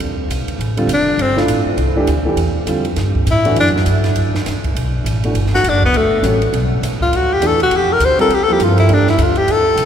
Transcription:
0.00 0.28 D2 medium
0.00 ride medium
0.28 0.46 C2 medium
0.28 hi-hat pedal medium
0.28 ride medium
0.47 muted upright bass stroke soft
0.47 ride soft
0.58 0.86 A1 medium
0.58 ride medium
0.77 0.88 D3 medium
0.77 0.88 G3 medium
0.77 0.88 C4 medium
0.77 0.88 F4 medium
0.77 ride soft
0.87 1.17 F1 medium
0.87 hi-hat pedal soft
0.87 ride medium
0.94 1.23 D4 medium
1.18 1.46 G1 medium
1.18 ride medium
1.22 1.38 C4 medium
1.36 1.76 A3 medium
1.36 1.76 D4 medium
1.36 1.75 E4 medium
1.36 1.76 F4 medium
1.36 snare soft
1.47 1.64 A1 medium
1.47 hi-hat pedal medium
1.47 ride medium
1.65 muted upright bass stroke soft
1.77 2.06 C2 medium
1.77 ride soft
1.96 2.06 E3 medium
1.96 2.07 A3 medium
1.96 2.07 D4 medium
1.96 2.07 G4 medium
2.07 2.36 D2 medium
2.07 hi-hat pedal soft
2.07 ride medium
2.25 2.36 E3 medium
2.25 2.36 A3 medium
2.25 2.36 D4 medium
2.25 2.37 G4 medium
2.36 2.65 E2 medium
2.36 ride medium
2.66 2.95 F2 medium
2.66 2.83 D3 medium
2.66 2.83 G3 medium
2.66 2.84 C4 soft
2.66 2.84 F4 medium
2.66 hi-hat pedal medium
2.66 ride medium
2.85 ride soft
2.96 3.26 G2 medium
2.96 snare soft
2.96 ride medium
3.15 kick soft
3.26 3.55 A2 medium
3.26 hi-hat pedal soft
3.26 ride medium
3.31 3.57 E4 loud
3.45 3.84 E3 medium
3.45 3.84 A3 medium
3.45 3.84 D4 medium
3.45 3.84 F#4 medium
3.45 ride soft
3.56 3.85 F#2 medium
3.56 ride medium
3.60 3.70 D4 medium
3.66 snare soft
3.76 snare soft
3.86 4.15 G2 medium
3.86 hi-hat pedal medium
3.86 ride medium
4.04 snare soft
4.04 ride soft
4.16 4.45 D2 medium
4.16 ride medium
4.35 snare soft
4.46 4.74 C#2 medium
4.46 snare soft
4.46 hi-hat pedal soft
4.46 ride medium
4.64 kick soft
4.64 ride soft
4.75 5.03 B1 medium
4.75 ride medium
5.04 5.33 A1 medium
5.04 hi-hat pedal medium
5.04 ride medium
5.24 5.34 E3 soft
5.24 5.34 A3 soft
5.24 5.34 D4 soft
5.24 5.35 F#4 medium
5.24 ride soft
5.34 5.63 G1 medium
5.34 ride medium
5.46 snare soft
5.55 5.70 F#4 medium
5.55 snare soft
5.64 5.92 F#1 medium
5.64 hi-hat pedal medium
5.64 ride medium
5.69 5.84 D4 medium
5.83 5.99 B3 medium
5.83 kick medium
5.93 6.22 G1 medium
5.93 ride medium
5.97 6.25 A3 medium
6.22 6.51 A1 medium
6.22 6.39 G3 medium
6.22 6.39 C#4 medium
6.22 6.39 F#4 soft
6.22 6.40 A4 medium
6.22 hi-hat pedal medium
6.22 ride medium
6.42 ride soft
6.52 6.81 B1 medium
6.52 ride medium
6.82 7.10 C#2 medium
6.82 hi-hat pedal medium
6.82 ride medium
7.01 7.18 F4 medium
7.01 kick soft
7.11 7.40 D2 medium
7.11 ride medium
7.16 7.35 F#4 medium
7.34 7.49 G4 medium
7.40 7.70 E2 medium
7.40 7.58 E3 medium
7.40 7.58 A3 medium
7.40 7.58 D4 medium
7.40 7.58 F#4 medium
7.40 hi-hat pedal medium
7.40 ride medium
7.47 7.62 A4 medium
7.60 7.78 F#4 medium
7.60 ride soft
7.70 7.99 F2 medium
7.70 ride medium
7.77 7.94 G4 medium
7.93 8.07 A#4 medium
8.00 8.28 D2 medium
8.00 hi-hat pedal medium
8.00 ride medium
8.05 8.21 C5 loud
8.18 8.29 G3 medium
8.18 8.29 C4 medium
8.18 8.29 F4 medium
8.18 8.36 A4 medium
8.18 8.30 A#4 medium
8.18 ride soft
8.29 8.58 E2 medium
8.29 ride medium
8.34 8.45 G4 medium
8.43 8.54 A4 medium
8.48 8.87 F3 medium
8.48 8.87 A#3 medium
8.48 8.87 E4 medium
8.48 8.88 A4 medium
8.53 8.65 G4 medium
8.59 8.88 G2 medium
8.59 hi-hat pedal medium
8.59 ride medium
8.63 8.79 F4 medium
8.78 8.95 E4 medium
8.78 ride soft
8.88 9.17 F2 medium
8.88 9.05 E3 medium
8.88 9.05 A3 medium
8.88 9.05 D4 medium
8.88 9.06 G4 medium
8.88 ride medium
8.93 9.09 D4 medium
9.07 9.24 E4 medium
9.07 snare soft
9.18 9.47 D2 medium
9.18 hi-hat pedal soft
9.18 ride medium
9.23 9.39 F4 medium
9.36 9.53 G4 medium
9.36 ride soft
9.47 9.75 E2 medium
9.47 ride medium
9.52 9.85 A4 loud
9.76 9.85 C2 medium
9.76 hi-hat pedal medium
9.76 ride medium

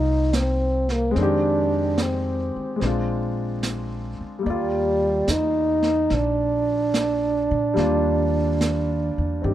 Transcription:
0.00 1.12 C2 medium
0.00 1.15 A#3 soft
0.00 1.14 C4 soft
0.00 0.38 D#4 medium
0.00 1.16 D#4 soft
0.00 1.16 F4 soft
0.33 0.94 C4 medium
0.33 snare soft
0.33 hi-hat pedal soft
0.89 1.19 A#3 medium
0.89 snare soft
1.11 2.75 G#3 medium
1.15 2.51 F2 medium
1.15 2.82 D#3 soft
1.15 2.79 C4 soft
1.15 2.05 D4 medium
1.15 brush sweep soft
1.15 snare soft
1.23 2.84 G4 medium
1.98 snare soft
1.98 hi-hat pedal soft
2.03 2.83 C4 medium
2.56 muted upright bass stroke soft
2.76 4.43 G#3 soft
2.76 4.45 C4 soft
2.81 4.16 A#1 medium
2.81 4.47 D4 soft
2.81 brush sweep soft
2.81 snare soft
2.87 4.49 F4 soft
3.63 snare soft
3.63 hi-hat pedal soft
4.21 muted upright bass stroke soft
4.39 7.72 G3 soft
4.39 7.74 A#3 soft
4.45 5.24 D#2 medium
4.45 5.32 G3 medium
4.45 7.77 D5 soft
4.45 brush sweep soft
4.50 7.77 F4 soft
5.28 6.07 E2 medium
5.28 6.15 D#4 medium
5.28 snare soft
5.28 hi-hat pedal medium
5.82 snare soft
6.10 7.46 A#1 medium
6.10 9.54 D4 medium
6.10 brush sweep soft
6.10 snare soft
6.94 snare soft
6.94 hi-hat pedal medium
7.51 7.75 A#2 medium
7.74 9.12 D#2 medium
7.74 9.54 G3 medium
7.74 9.54 A#3 soft
7.74 9.54 D4 soft
7.74 brush sweep soft
7.74 snare soft
7.79 9.54 F4 medium
8.61 snare soft
8.61 hi-hat pedal medium
9.18 9.42 E2 medium
9.42 9.54 G2 medium
9.42 9.54 D#3 soft
9.42 9.54 C4 soft
9.42 9.54 G4 soft
9.42 brush sweep soft

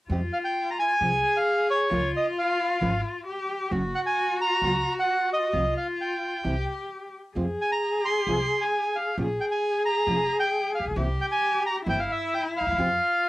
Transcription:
0.09 0.29 F2 medium
0.09 0.20 C3 medium
0.09 0.20 F3 medium
0.09 0.20 G#3 medium
0.09 0.20 C4 medium
0.09 0.97 F4 medium
0.09 0.20 G4 medium
0.33 0.38 F5 medium
0.45 0.70 G5 medium
0.71 0.78 A#5 medium
0.79 1.38 G#5 medium
1.01 1.20 C2 medium
1.01 1.10 C3 medium
1.01 1.11 F3 medium
1.01 1.11 G#3 medium
1.01 1.11 C4 medium
1.01 1.11 G4 medium
1.01 1.91 G#4 medium
1.37 1.68 F5 medium
1.70 2.12 C#5 medium
1.90 2.11 C#2 medium
1.90 2.00 C#3 medium
1.90 2.00 F3 medium
1.90 2.01 G#3 medium
1.90 2.01 C#4 medium
1.90 3.26 F4 medium
1.90 2.01 F4 medium
1.90 2.01 A#4 medium
2.17 2.26 D#5 medium
2.38 3.01 F5 medium
2.81 3.01 G#1 medium
2.81 2.90 C#3 medium
2.81 2.90 F3 medium
2.81 2.90 G#3 medium
2.81 2.91 C#4 medium
2.81 2.91 F4 medium
2.81 2.91 A#4 medium
3.27 3.73 G4 medium
3.71 3.91 F#1 medium
3.71 3.81 C#3 medium
3.71 3.81 F#3 medium
3.71 3.81 A#3 medium
3.71 3.81 C#4 medium
3.71 5.54 F#4 medium
3.71 3.81 F#4 medium
3.95 4.00 F#5 medium
4.06 4.38 G#5 medium
4.41 4.93 A#5 loud
4.62 4.81 C#2 medium
4.62 4.72 C#3 medium
4.62 4.72 F#3 medium
4.62 4.72 A#3 medium
4.62 4.72 C#4 medium
4.62 4.72 F#4 medium
4.99 5.30 F#5 medium
5.33 5.74 D#5 medium
5.53 5.72 C2 medium
5.53 5.62 C3 medium
5.53 5.63 F3 medium
5.53 5.63 G3 medium
5.53 5.63 C4 medium
5.53 6.45 F4 medium
5.53 5.63 F4 medium
5.77 5.87 F5 medium
6.01 6.65 G5 medium
6.44 6.64 C2 medium
6.44 6.54 C3 medium
6.44 6.54 E3 medium
6.44 6.54 G3 medium
6.44 6.54 C4 medium
6.44 6.54 E4 medium
6.44 7.11 G4 medium
7.35 7.55 F2 medium
7.35 7.45 C3 medium
7.35 7.45 F3 medium
7.35 7.45 G#3 medium
7.35 7.45 C4 medium
7.35 7.46 F4 medium
7.35 9.14 G#4 medium
7.61 7.71 G#5 medium
7.72 8.06 A#5 medium
8.05 8.64 C6 medium
8.27 8.46 C2 medium
8.27 8.37 C3 medium
8.27 8.36 F3 medium
8.27 8.37 G#3 medium
8.27 8.37 C4 medium
8.27 8.37 F4 medium
8.61 8.96 G#5 medium
8.96 9.16 F5 medium
9.17 9.37 A#1 medium
9.17 9.27 F3 medium
9.17 9.27 A#3 medium
9.17 9.27 C#4 medium
9.17 9.27 F4 medium
9.17 10.98 G#4 medium
9.41 9.46 G5 medium
9.51 9.83 G#5 medium
9.85 10.38 A#5 medium
10.07 10.26 F1 medium
10.07 10.17 F3 medium
10.07 10.17 A#3 medium
10.07 10.17 C#4 medium
10.07 10.17 F4 medium
10.40 10.72 G5 medium
10.75 10.85 F5 medium
10.80 10.85 A1 soft
10.85 10.90 A#1 medium
10.91 10.96 B1 medium
10.96 11.16 C2 medium
10.96 11.06 C3 medium
10.96 11.06 E3 medium
10.96 11.06 A#3 medium
10.96 11.06 C4 medium
10.96 11.07 E4 medium
10.96 11.85 G4 medium
11.21 11.26 G5 medium
11.32 11.63 G#5 medium
11.66 11.76 A#5 medium
11.86 12.06 G1 medium
11.86 11.96 C3 medium
11.86 11.96 E3 medium
11.86 11.97 A#3 medium
11.86 11.97 C4 medium
11.86 12.79 E4 medium
11.86 11.97 E4 medium
11.86 12.00 G5 medium
12.00 12.11 F5 medium
12.12 12.35 E5 medium
12.34 12.44 G5 medium
12.57 13.29 F5 medium
12.61 12.66 D2 soft
12.67 12.72 D#2 medium
12.72 12.78 E2 medium
12.78 12.98 F2 medium
12.78 12.87 C3 medium
12.78 12.88 F3 medium
12.78 12.88 G#3 medium
12.78 12.88 C4 medium
12.78 13.29 F4 medium
12.78 12.88 G4 medium

